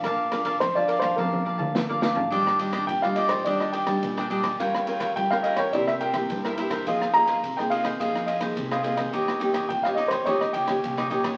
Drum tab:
RD |x-xxx-xx--------|x-xxx-xxx-xxx-xx|x-xxx-xxx-xxx-xx|x-xxx-xxx-xxx-xx|
SD |r-r-r--r----o-o-|-r-r-r-r-r-r-r-r|-r-r-r-r-r-r-r-r|-r-r-r-r-r-r-r-r|
T1 |--------oo------|----------------|----------------|----------------|
T2 |-----------o----|----------------|----------------|----------------|
FT |---------------o|----------------|----------------|----------------|
BD |o--oo--oo---o---|o--oo--oo--oo--o|o--oo--oo--oo--o|o--oo--oo--oo--o|

RD |x-xxx-xxx-xxx-xx|
SD |-r-r-r-r-r-r-r-r|
T1 |----------------|
T2 |----------------|
FT |----------------|
BD |o--oo--oo--oo--o|